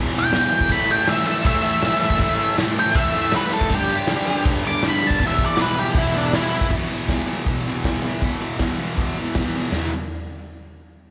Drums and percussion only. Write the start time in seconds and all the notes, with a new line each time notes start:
0.33 snare, crash
0.61 kick
0.69 kick, crash, shaker
0.87 shaker
1.08 snare, crash, shaker
1.26 shaker
1.45 kick, crash, shaker
1.62 shaker
1.81 snare, crash, shaker
2.01 shaker
2.10 kick, shaker
2.19 kick, crash, shaker
2.37 shaker
2.56 snare, crash, shaker
2.74 shaker
2.86 shaker
2.95 kick, crash, shaker
3.15 shaker
3.32 snare, crash, shaker
3.53 shaker
3.61 kick, shaker
3.69 kick, crash
3.73 shaker
3.91 shaker
4.07 snare, crash, shaker
4.27 shaker
4.36 shaker
4.44 kick, crash, shaker
4.63 shaker
4.82 snare, crash, shaker
5.00 shaker
5.10 kick, shaker
5.19 kick, crash, shaker
5.38 kick, shaker
5.49 shaker
5.57 snare, crash, shaker
5.76 shaker
5.87 shaker
5.94 kick, crash, shaker
6.14 shaker
6.24 shaker
6.33 snare, crash, shaker
6.53 shaker
6.61 kick
6.70 kick, crash
7.08 kick, snare, open hi-hat
7.46 kick, open hi-hat
7.84 kick, snare, open hi-hat
8.21 kick, open hi-hat
8.59 kick, snare, open hi-hat
8.97 kick, open hi-hat
9.35 kick, snare, open hi-hat
9.72 snare, floor tom, crash